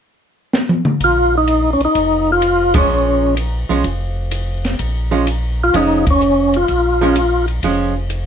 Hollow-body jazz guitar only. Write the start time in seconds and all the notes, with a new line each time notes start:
2.74 F3 G#3 C#4
3.69 F3 G#3 C#4
5.11 F3 G#3 C#4
5.74 F3 G#3 C#4
7.01 F3 G#3 C#4
7.64 F3 G#3 C#4